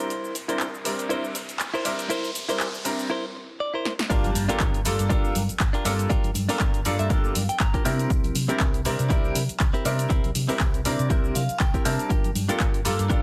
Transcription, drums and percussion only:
0.10 closed hi-hat, shaker
0.24 shaker
0.35 open hi-hat, shaker
0.49 closed hi-hat, shaker
0.60 clap, shaker
0.75 shaker
0.85 open hi-hat, shaker
0.99 closed hi-hat, shaker
1.10 closed hi-hat, shaker
1.24 shaker
1.35 open hi-hat, shaker
1.49 closed hi-hat, shaker
1.60 clap, closed hi-hat, shaker
1.74 shaker
1.85 open hi-hat, shaker
1.99 closed hi-hat, shaker
2.10 closed hi-hat, shaker
2.24 shaker
2.35 open hi-hat, shaker
2.49 closed hi-hat, shaker
2.60 clap, shaker
2.74 shaker
2.85 open hi-hat, shaker
2.99 closed hi-hat, shaker
3.85 snare
3.99 snare
4.10 kick, closed hi-hat, tambourine, shaker
4.24 closed hi-hat, tambourine, low conga, shaker
4.35 open hi-hat, tambourine, low conga, shaker
4.49 closed hi-hat, tambourine, high conga, shaker
4.60 kick, clap, closed hi-hat, tambourine, shaker
4.74 closed hi-hat, tambourine, shaker
4.85 open hi-hat, tambourine, shaker
4.99 closed hi-hat, tambourine, shaker
5.10 kick, closed hi-hat, tambourine, shaker
5.24 tambourine, high conga, shaker
5.35 open hi-hat, tambourine, low conga, shaker
5.49 closed hi-hat, tambourine, shaker
5.60 kick, clap, closed hi-hat, tambourine, shaker
5.74 closed hi-hat, tambourine, shaker
5.85 open hi-hat, tambourine, high conga, shaker
5.99 closed hi-hat, tambourine, shaker
6.10 kick, closed hi-hat, tambourine, shaker
6.24 closed hi-hat, tambourine, low conga, shaker
6.34 open hi-hat, tambourine, low conga, shaker
6.49 open hi-hat, tambourine, high conga, shaker
6.60 kick, clap, closed hi-hat, tambourine, shaker
6.74 closed hi-hat, tambourine, shaker
6.85 open hi-hat, tambourine, shaker
6.98 closed hi-hat, tambourine, shaker
7.10 kick, closed hi-hat, tambourine, shaker
7.24 tambourine, high conga, shaker
7.35 open hi-hat, tambourine, low conga, shaker
7.49 closed hi-hat, tambourine, shaker
7.60 kick, clap, closed hi-hat, tambourine, shaker
7.74 kick, closed hi-hat, tambourine, shaker
7.85 open hi-hat, tambourine, high conga, shaker
7.99 closed hi-hat, tambourine, shaker
8.10 kick, closed hi-hat, tambourine, shaker
8.24 closed hi-hat, tambourine, low conga, shaker
8.35 open hi-hat, tambourine, low conga, shaker
8.49 closed hi-hat, tambourine, high conga, shaker
8.60 kick, clap, closed hi-hat, tambourine, shaker
8.73 closed hi-hat, tambourine, shaker
8.85 open hi-hat, tambourine, shaker
8.99 closed hi-hat, tambourine, shaker
9.10 kick, closed hi-hat, tambourine, shaker
9.24 tambourine, high conga, shaker
9.35 open hi-hat, tambourine, low conga, shaker
9.49 closed hi-hat, tambourine, shaker
9.60 kick, clap, closed hi-hat, tambourine, shaker
9.74 closed hi-hat, tambourine, shaker
9.85 open hi-hat, tambourine, high conga, shaker
9.99 closed hi-hat, tambourine, shaker
10.10 kick, closed hi-hat, tambourine, shaker
10.24 closed hi-hat, tambourine, low conga, shaker
10.35 open hi-hat, tambourine, low conga, shaker
10.49 open hi-hat, tambourine, high conga, shaker
10.60 kick, clap, closed hi-hat, tambourine, shaker
10.74 closed hi-hat, tambourine, shaker
10.85 open hi-hat, tambourine, shaker
10.99 closed hi-hat, tambourine, shaker
11.10 kick, closed hi-hat, tambourine, shaker
11.24 tambourine, high conga, shaker
11.35 open hi-hat, tambourine, low conga, shaker
11.49 closed hi-hat, tambourine, shaker
11.60 kick, clap, closed hi-hat, tambourine, shaker
11.74 kick, closed hi-hat, tambourine, shaker
11.85 open hi-hat, tambourine, high conga, shaker
11.99 closed hi-hat, tambourine, shaker
12.10 kick, closed hi-hat, tambourine, shaker
12.24 closed hi-hat, tambourine, low conga, shaker
12.35 open hi-hat, tambourine, low conga, shaker
12.49 closed hi-hat, tambourine, high conga, shaker
12.60 kick, clap, closed hi-hat, shaker
12.74 closed hi-hat, tambourine, shaker
12.85 open hi-hat, tambourine, shaker
12.99 closed hi-hat, tambourine, shaker
13.09 kick, closed hi-hat, tambourine, shaker

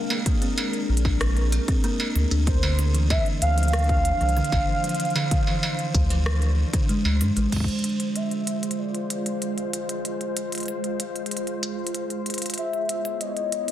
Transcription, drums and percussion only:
0.10 closed hi-hat, struck metal
0.26 kick, closed hi-hat
0.42 closed hi-hat
0.58 closed hi-hat, struck metal
0.73 closed hi-hat
0.97 closed hi-hat
1.05 kick, struck metal
1.21 cross-stick, closed hi-hat
1.37 closed hi-hat
1.52 closed hi-hat, struck metal
1.68 kick, closed hi-hat
1.84 closed hi-hat
2.00 closed hi-hat, struck metal
2.16 closed hi-hat
2.31 closed hi-hat
2.47 kick, closed hi-hat
2.63 struck metal
2.79 closed hi-hat
2.94 closed hi-hat
3.10 kick, closed hi-hat, struck metal
3.26 closed hi-hat
3.42 closed hi-hat
3.58 closed hi-hat
3.63 closed hi-hat
3.68 closed hi-hat
3.73 cross-stick, closed hi-hat
3.79 closed hi-hat
3.84 closed hi-hat
3.89 kick, closed hi-hat
4.05 closed hi-hat
4.21 closed hi-hat
4.29 closed hi-hat
4.37 closed hi-hat
4.44 closed hi-hat
4.52 kick, closed hi-hat, struck metal
4.84 closed hi-hat
4.89 closed hi-hat
4.94 closed hi-hat
5.00 closed hi-hat
5.05 closed hi-hat
5.10 closed hi-hat
5.16 closed hi-hat, struck metal
5.31 kick, closed hi-hat
5.47 struck metal
5.63 struck metal
5.79 closed hi-hat
5.94 kick, closed hi-hat
6.10 closed hi-hat, struck metal
6.26 cross-stick
6.42 closed hi-hat
6.73 kick, closed hi-hat
6.89 closed hi-hat
7.05 struck metal
7.21 closed hi-hat
7.37 closed hi-hat
7.52 kick, closed hi-hat, crash
7.56 kick
7.60 kick
7.64 kick
7.68 closed hi-hat
7.79 closed hi-hat
7.84 closed hi-hat
7.89 closed hi-hat
8.00 closed hi-hat
8.16 closed hi-hat
8.31 closed hi-hat
8.47 closed hi-hat
8.63 closed hi-hat
8.71 closed hi-hat
8.95 closed hi-hat
9.10 closed hi-hat
9.26 closed hi-hat
9.42 closed hi-hat
9.58 closed hi-hat
9.73 closed hi-hat
9.89 closed hi-hat
10.05 closed hi-hat
10.21 closed hi-hat
10.37 closed hi-hat
10.52 closed hi-hat
10.55 closed hi-hat
10.58 closed hi-hat
10.60 closed hi-hat
10.63 closed hi-hat
10.66 closed hi-hat
10.68 closed hi-hat
10.84 closed hi-hat
11.00 closed hi-hat
11.16 closed hi-hat
11.26 closed hi-hat
11.31 closed hi-hat
11.37 closed hi-hat
11.47 closed hi-hat
11.63 closed hi-hat
11.87 closed hi-hat
11.94 closed hi-hat
12.10 closed hi-hat
12.26 closed hi-hat
12.30 closed hi-hat
12.34 closed hi-hat
12.38 closed hi-hat
12.42 closed hi-hat
12.46 closed hi-hat
12.50 closed hi-hat
12.54 closed hi-hat
12.58 closed hi-hat
12.73 closed hi-hat
12.89 closed hi-hat
13.05 closed hi-hat
13.21 closed hi-hat
13.37 closed hi-hat
13.52 closed hi-hat
13.68 closed hi-hat

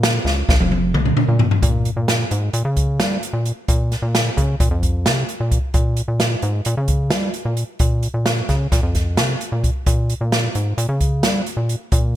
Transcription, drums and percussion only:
0.03 snare, closed hi-hat
0.26 snare
0.49 kick, snare
0.61 high tom
0.72 high tom
0.94 mid tom
1.05 mid tom
1.17 mid tom
1.39 floor tom
1.51 floor tom
1.62 kick, closed hi-hat
1.85 closed hi-hat
2.08 snare, closed hi-hat
2.31 closed hi-hat
2.53 closed hi-hat
2.77 kick, closed hi-hat
3.00 snare, closed hi-hat
3.23 closed hi-hat
3.46 closed hi-hat
3.68 kick, closed hi-hat
3.92 snare, closed hi-hat
4.15 snare, closed hi-hat
4.37 kick, closed hi-hat
4.60 kick, closed hi-hat
4.83 kick, closed hi-hat
5.06 snare, closed hi-hat
5.29 closed hi-hat
5.51 kick, closed hi-hat
5.74 kick, closed hi-hat
5.97 closed hi-hat
6.20 snare, closed hi-hat
6.42 closed hi-hat
6.65 closed hi-hat
6.88 kick, closed hi-hat
7.10 snare, closed hi-hat
7.34 closed hi-hat
7.57 closed hi-hat
7.79 kick, closed hi-hat
8.03 closed hi-hat
8.26 snare, closed hi-hat
8.49 kick, snare, closed hi-hat
8.72 kick, snare, closed hi-hat
8.95 kick, snare, closed hi-hat
9.17 snare, closed hi-hat
9.41 closed hi-hat
9.64 kick, closed hi-hat
9.86 kick, closed hi-hat
10.10 closed hi-hat
10.32 snare, closed hi-hat
10.55 closed hi-hat
10.78 closed hi-hat
11.01 kick, closed hi-hat
11.23 snare, closed hi-hat
11.46 closed hi-hat
11.69 closed hi-hat
11.92 kick, closed hi-hat

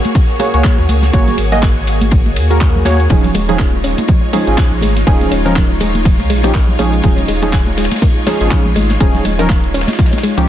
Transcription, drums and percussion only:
0.05 closed hi-hat, high conga
0.15 kick, closed hi-hat, ride, muted conga
0.40 open hi-hat, ride, muted conga
0.54 closed hi-hat
0.64 kick, snare, clap, closed hi-hat, ride
0.78 muted conga
0.89 open hi-hat, ride, high conga
1.02 snare, closed hi-hat, muted conga
1.13 kick, closed hi-hat, ride
1.28 snare, closed hi-hat, low conga
1.38 open hi-hat, ride, muted conga
1.52 snare, closed hi-hat, low conga
1.62 kick, snare, clap, closed hi-hat, ride, muted conga
1.87 open hi-hat, ride
2.01 closed hi-hat, muted conga, high conga
2.11 kick, closed hi-hat, ride
2.26 ride, muted conga
2.36 open hi-hat, ride
2.51 closed hi-hat
2.61 kick, clap, closed hi-hat, ride, muted conga
2.75 low conga
2.85 snare, open hi-hat, ride, muted conga, high conga
3.00 closed hi-hat
3.09 kick, closed hi-hat, ride, muted conga
3.24 closed hi-hat, low conga
3.35 open hi-hat, ride, muted conga
3.49 closed hi-hat, low conga
3.59 kick, snare, clap, closed hi-hat, ride
3.73 muted conga
3.84 open hi-hat, ride
3.98 closed hi-hat, muted conga, high conga
4.08 kick, closed hi-hat, ride
4.33 open hi-hat, ride, muted conga
4.47 closed hi-hat
4.57 kick, snare, clap, closed hi-hat, ride, muted conga
4.81 open hi-hat, ride, high conga
4.97 snare, closed hi-hat, muted conga
5.07 kick, closed hi-hat, ride
5.21 snare, closed hi-hat, muted conga
5.31 open hi-hat, ride
5.45 snare, closed hi-hat, low conga
5.55 kick, snare, clap, closed hi-hat, ride, muted conga
5.80 open hi-hat, ride, muted conga
5.95 closed hi-hat, high conga
6.05 kick, closed hi-hat, ride
6.19 ride, muted conga
6.30 open hi-hat, ride
6.44 closed hi-hat, ride, muted conga
6.54 kick, snare, clap, closed hi-hat, ride
6.68 low conga
6.79 open hi-hat, ride, muted conga, high conga
6.93 closed hi-hat
7.03 kick, closed hi-hat, ride, muted conga
7.17 closed hi-hat, low conga
7.28 open hi-hat, ride
7.42 closed hi-hat, muted conga, low conga
7.53 kick, snare, clap, closed hi-hat, ride
7.67 muted conga
7.77 snare, open hi-hat, ride
7.85 snare, ride
7.91 snare, closed hi-hat, ride, high conga
7.96 snare, ride
8.02 kick, closed hi-hat, ride, muted conga
8.27 snare, open hi-hat, ride, muted conga
8.41 closed hi-hat
8.51 kick, snare, clap, closed hi-hat, ride
8.65 muted conga
8.76 open hi-hat, ride, high conga
8.90 snare, closed hi-hat, muted conga
9.00 kick, closed hi-hat, ride
9.14 snare, closed hi-hat, low conga
9.25 open hi-hat, ride, muted conga
9.38 snare, closed hi-hat, low conga
9.49 kick, snare, clap, closed hi-hat, ride, muted conga
9.64 closed hi-hat
9.74 open hi-hat, ride
9.81 snare, ride
9.88 snare, closed hi-hat, ride, muted conga, high conga
9.93 snare, ride
9.99 kick, snare, closed hi-hat, ride
10.06 snare, ride
10.13 closed hi-hat, ride, muted conga
10.18 snare, ride
10.23 open hi-hat, ride
10.38 closed hi-hat

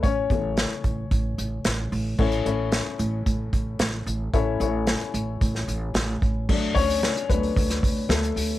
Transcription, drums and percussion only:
0.04 kick, closed hi-hat
0.30 kick, closed hi-hat
0.57 snare, closed hi-hat
0.84 kick, closed hi-hat
1.11 kick, closed hi-hat
1.38 closed hi-hat
1.65 snare, closed hi-hat
1.93 open hi-hat
2.19 kick, crash
2.32 closed hi-hat
2.46 closed hi-hat
2.72 snare, closed hi-hat
2.99 closed hi-hat
3.26 kick, closed hi-hat
3.53 kick, closed hi-hat
3.79 snare, closed hi-hat
4.07 closed hi-hat
4.34 kick, closed hi-hat
4.61 closed hi-hat
4.87 snare, closed hi-hat
5.01 closed hi-hat
5.14 closed hi-hat
5.41 kick, closed hi-hat
5.55 snare
5.68 closed hi-hat
5.94 snare, closed hi-hat
6.22 kick, closed hi-hat
6.49 kick, crash
6.62 open hi-hat
6.75 kick, hi-hat pedal, open hi-hat
6.90 hi-hat pedal, open hi-hat
7.03 snare, hi-hat pedal, open hi-hat
7.16 hi-hat pedal
7.29 kick, hi-hat pedal, open hi-hat
7.43 open hi-hat
7.56 kick, hi-hat pedal, open hi-hat
7.70 snare, hi-hat pedal
7.83 kick, hi-hat pedal, open hi-hat
7.96 open hi-hat
8.10 snare, hi-hat pedal, open hi-hat
8.23 hi-hat pedal
8.37 hi-hat pedal, open hi-hat
8.51 open hi-hat

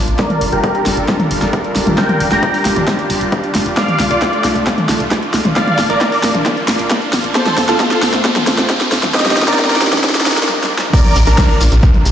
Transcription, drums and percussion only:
0.08 closed hi-hat
0.19 kick, snare, closed hi-hat
0.30 closed hi-hat, mid tom
0.41 open hi-hat
0.52 closed hi-hat
0.64 kick, closed hi-hat
0.75 closed hi-hat
0.86 snare, open hi-hat
0.97 closed hi-hat
1.08 kick, snare, closed hi-hat
1.20 closed hi-hat, mid tom
1.31 open hi-hat
1.42 snare, closed hi-hat
1.53 kick, closed hi-hat
1.64 closed hi-hat
1.76 snare, open hi-hat
1.87 closed hi-hat, mid tom
1.98 kick, snare, closed hi-hat
2.09 closed hi-hat, mid tom
2.20 open hi-hat
2.32 snare, closed hi-hat
2.43 kick, closed hi-hat
2.54 open hi-hat
2.65 snare, open hi-hat
2.76 closed hi-hat, mid tom
2.87 kick, snare, closed hi-hat
2.99 closed hi-hat
3.10 open hi-hat
3.21 closed hi-hat
3.32 kick, closed hi-hat
3.44 closed hi-hat
3.55 snare, open hi-hat
3.66 closed hi-hat
3.77 kick, snare, closed hi-hat
3.88 closed hi-hat, mid tom
3.99 snare, open hi-hat
4.11 closed hi-hat
4.22 kick, snare, closed hi-hat
4.33 closed hi-hat
4.44 snare, open hi-hat
4.56 closed hi-hat
4.67 kick, snare, closed hi-hat
4.78 closed hi-hat, mid tom
4.89 snare, open hi-hat
5.00 closed hi-hat
5.11 kick, snare, closed hi-hat
5.23 closed hi-hat
5.34 snare, open hi-hat
5.45 closed hi-hat, mid tom
5.56 kick, snare, closed hi-hat
5.67 closed hi-hat, mid tom
5.79 snare, open hi-hat
5.90 closed hi-hat
6.01 kick, snare, closed hi-hat
6.12 open hi-hat
6.23 snare, open hi-hat
6.35 closed hi-hat, mid tom
6.46 kick, snare, closed hi-hat
6.57 closed hi-hat
6.68 snare, open hi-hat
6.79 closed hi-hat
6.90 kick, snare, closed hi-hat
7.02 closed hi-hat
7.13 snare, open hi-hat
7.24 closed hi-hat
7.35 kick, snare, closed hi-hat
7.46 snare, closed hi-hat, mid tom
7.58 snare, open hi-hat
7.69 snare, closed hi-hat
7.80 kick, snare, closed hi-hat
7.91 snare, closed hi-hat
8.02 snare, open hi-hat
8.14 snare, closed hi-hat
8.25 kick, snare, closed hi-hat
8.36 snare, closed hi-hat, mid tom
8.47 snare, open hi-hat
8.58 snare, closed hi-hat
8.70 kick, snare, closed hi-hat
8.81 snare, closed hi-hat
8.92 snare, open hi-hat
9.03 snare, closed hi-hat, mid tom
9.14 kick, snare, closed hi-hat
9.20 snare
9.26 snare, closed hi-hat, mid tom
9.31 snare
9.37 snare, open hi-hat
9.42 snare
9.48 snare, closed hi-hat
9.54 snare
9.59 kick, snare, closed hi-hat
9.65 snare
9.70 snare, open hi-hat
9.76 snare
9.81 snare, open hi-hat
9.87 snare
9.93 snare, closed hi-hat, mid tom
9.98 snare
10.04 kick, snare, closed hi-hat
10.09 snare
10.15 snare, closed hi-hat
10.21 snare
10.26 snare, open hi-hat
10.32 snare
10.37 snare, closed hi-hat
10.43 snare
10.49 snare
10.64 snare
10.78 snare
10.93 kick, closed hi-hat, crash, shekere
11.05 closed hi-hat, mid tom
11.16 open hi-hat, shekere
11.27 closed hi-hat, shekere
11.38 kick, snare, closed hi-hat, shekere
11.49 closed hi-hat
11.61 open hi-hat, shekere
11.72 closed hi-hat, shekere
11.83 kick, closed hi-hat, shekere
11.94 closed hi-hat, mid tom
12.05 open hi-hat, shekere

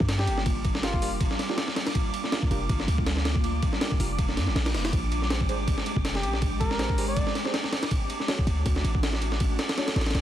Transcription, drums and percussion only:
0.00 kick
0.09 snare, ride
0.19 snare
0.27 ride
0.38 snare
0.46 kick, ride
0.65 kick, ride
0.75 snare
0.83 snare, ride
0.94 kick
1.02 open hi-hat
1.21 kick, ride
1.31 snare
1.39 snare, ride
1.49 snare
1.58 snare, ride
1.68 snare
1.76 snare, ride
1.87 snare, ride
1.95 kick, ride
2.14 ride
2.24 snare
2.32 snare, ride
2.43 kick
2.51 ride
2.69 kick, ride
2.80 snare
2.88 ride
2.98 kick
3.06 snare, ride
3.17 snare
3.25 snare, ride
3.36 kick
3.44 ride
3.62 kick, ride
3.73 snare
3.81 snare, ride
3.91 kick
4.00 open hi-hat
4.19 kick, ride
4.29 snare
4.37 snare, ride
4.47 snare
4.56 snare, ride
4.66 snare, ride
4.75 snare, ride
4.85 snare, ride
4.93 kick, ride
5.12 ride
5.22 snare
5.30 snare, ride
5.41 kick
5.49 ride
5.68 kick, ride
5.78 snare
5.86 ride
5.96 kick
6.05 snare, ride
6.15 snare
6.23 ride
6.33 snare
6.42 kick, ride
6.61 kick, ride
6.71 snare
6.79 snare, ride
6.90 kick
6.98 open hi-hat
7.17 kick, ride
7.27 snare
7.35 snare, ride
7.45 snare
7.54 snare, ride
7.64 snare
7.73 snare, ride
7.83 snare, ride
7.91 kick, ride
8.10 ride
8.20 snare
8.28 snare, ride
8.39 kick
8.47 ride
8.66 kick, ride
8.76 snare
8.85 ride
8.95 kick
9.03 snare, ride
9.13 snare
9.22 ride
9.32 snare
9.40 kick, ride
9.59 snare, ride
9.69 snare, ride
9.78 snare, ride
9.88 snare, ride
9.96 snare, ride
10.01 snare, ride
10.06 snare, ride
10.11 snare, ride
10.15 snare, ride

